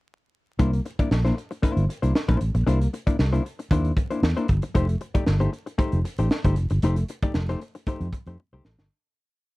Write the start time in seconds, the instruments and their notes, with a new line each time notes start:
0.59 fingered electric bass C2, hollow-body jazz guitar A#3 D4 E4 C5, kick, closed hi-hat
0.73 muted hollow-body jazz guitar stroke, closed hi-hat
0.85 muted hollow-body jazz guitar stroke, closed hi-hat
0.99 hollow-body jazz guitar A#3 D4 E4 D5, muted fingered electric bass stroke, kick, closed hi-hat
1.11 fingered electric bass A#1, snare
1.25 hollow-body jazz guitar A#3 D4 E4 C5, snare, closed hi-hat
1.37 muted hollow-body jazz guitar stroke, closed hi-hat
1.51 muted hollow-body jazz guitar stroke, closed hi-hat
1.62 hollow-body jazz guitar A#3 D4 E4 C5, kick, closed hi-hat
1.77 fingered electric bass G1, closed hi-hat
1.89 muted hollow-body jazz guitar stroke, closed hi-hat
2.02 fingered electric bass C2, hollow-body jazz guitar A#3 D4 E4 C5, closed hi-hat
2.15 muted hollow-body jazz guitar stroke, snare
2.28 fingered electric bass A#1, hollow-body jazz guitar A#3 D4 E4 C5, kick, closed hi-hat
2.41 fingered electric bass A1, muted hollow-body jazz guitar stroke, closed hi-hat
2.55 fingered electric bass A#1, muted hollow-body jazz guitar stroke, closed hi-hat
2.66 fingered electric bass C2, hollow-body jazz guitar A#3 D4 E4 C5, closed hi-hat
2.81 muted hollow-body jazz guitar stroke, closed hi-hat
2.93 muted hollow-body jazz guitar stroke, closed hi-hat
3.07 hollow-body jazz guitar A#3 D4 E4 D5, muted fingered electric bass stroke, kick, closed hi-hat
3.19 fingered electric bass C2, muted hollow-body jazz guitar stroke, snare
3.33 hollow-body jazz guitar A#3 D4 E4 C5, closed hi-hat
3.46 closed hi-hat
3.59 muted hollow-body jazz guitar stroke, closed hi-hat
3.71 fingered electric bass D#2, hollow-body jazz guitar A#3 D4 E4 C5, kick, closed hi-hat
3.85 closed hi-hat
3.97 muted hollow-body jazz guitar stroke, kick, closed hi-hat
4.11 hollow-body jazz guitar A#3 D4 E4 C5, closed hi-hat
4.23 fingered electric bass E2, muted hollow-body jazz guitar stroke, snare
4.37 hollow-body jazz guitar A#3 D4 E4 C5, closed hi-hat
4.48 fingered electric bass G1, muted hollow-body jazz guitar stroke, kick, closed hi-hat
4.62 muted hollow-body jazz guitar stroke, closed hi-hat
4.74 fingered electric bass F1, hollow-body jazz guitar A3 D#4 G4 C5, kick, closed hi-hat
4.88 muted hollow-body jazz guitar stroke, closed hi-hat
5.01 muted hollow-body jazz guitar stroke, closed hi-hat
5.14 hollow-body jazz guitar A3 D#4 G4 D5, muted fingered electric bass stroke, kick, closed hi-hat
5.26 fingered electric bass G1, snare
5.40 hollow-body jazz guitar A3 D#4 G4 C5, closed hi-hat
5.52 muted hollow-body jazz guitar stroke, closed hi-hat
5.66 muted hollow-body jazz guitar stroke, closed hi-hat
5.78 hollow-body jazz guitar A3 D#4 G4 C5, kick, closed hi-hat
5.92 fingered electric bass F1, closed hi-hat
6.05 muted hollow-body jazz guitar stroke, closed hi-hat
6.18 fingered electric bass A1, hollow-body jazz guitar A3 D#4 G4 C5, closed hi-hat
6.31 snare
6.44 fingered electric bass G1, hollow-body jazz guitar A3 D#4 G4 C5, kick, closed hi-hat
6.56 fingered electric bass F1, closed hi-hat
6.70 fingered electric bass G1, muted hollow-body jazz guitar stroke, closed hi-hat
6.82 fingered electric bass F1, hollow-body jazz guitar A3 D#4 G4 C5, closed hi-hat
6.96 muted hollow-body jazz guitar stroke, closed hi-hat
7.08 muted hollow-body jazz guitar stroke, closed hi-hat
7.22 hollow-body jazz guitar A3 D#4 G4 D5, muted fingered electric bass stroke, kick, closed hi-hat
7.34 fingered electric bass F1, snare
7.48 hollow-body jazz guitar A3 D#4 G4 C5, snare, closed hi-hat
7.62 muted hollow-body jazz guitar stroke, closed hi-hat
7.75 muted hollow-body jazz guitar stroke, closed hi-hat
7.87 hollow-body jazz guitar A3 D#4 G4 C5, kick, closed hi-hat
8.00 fingered electric bass F2, closed hi-hat
8.13 muted hollow-body jazz guitar stroke, kick, closed hi-hat
8.26 fingered electric bass F2, hollow-body jazz guitar A3 D#4 G4 C5, closed hi-hat
8.39 muted hollow-body jazz guitar stroke
8.53 fingered electric bass C2, hollow-body jazz guitar A3 D#4 G4 C5
8.65 fingered electric bass A1, muted hollow-body jazz guitar stroke, snare
8.78 fingered electric bass G1, muted hollow-body jazz guitar stroke, snare